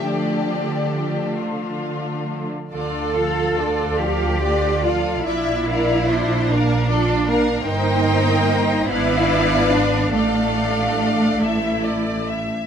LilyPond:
<<
  \new Staff \with { instrumentName = "Violin section" } { \time 6/8 \key d \minor \tempo 4. = 48 << { g'4. f'4~ f'16 r16 | d''8 f''8 d''8 f''8 d''8 f''8 | d''8 f''8 d''8 f''8 d''8 f''8 | g''4. eis''4. |
f''4. e''8 d''8 e''8 | } \\ { d'2~ d'8. r16 | f'8 a'8 f'8 a'8 f'8 a'8 | d''8 bes'8 d''8 bes'8 d''8 bes'8 | bes'4. d''4. |
d''4. r4. | } >> }
  \new Staff \with { instrumentName = "Violin section" } { \time 6/8 \key d \minor d''4. r4. | r4. d''4. | e''8 d''8 c''8 bes'8 a'8 bes'8 | c''4. b'4. |
a'2~ a'16 r8. | }
  \new Staff \with { instrumentName = "Cello section" } { \time 6/8 \key d \minor d2~ d8. r16 | a'4. g'4 f'8 | e'4. d'4. | ees'4. e'4 d'8 |
a2~ a8 r8 | }
  \new Staff \with { instrumentName = "Viola section" } { \time 6/8 \key d \minor <f a>2~ <f a>8. r16 | <d d'>8 <f f'>8 <d d'>8 <f f'>8 <d d'>8 <f f'>8 | <d' f'>8 <bes d'>8 <d' f'>8 <bes d'>8 <d' f'>8 <bes d'>8 | <bes ees'>4. <b d'>4. |
<a d'>4. <a e'>4~ <a e'>16 r16 | }
  \new Staff \with { instrumentName = "Double bass section" } { \clef bass \time 6/8 \key d \minor r2. | d,2. | bes,,2. | g,,4. gis,,4. |
a,,4. a,,4~ a,,16 r16 | }
>>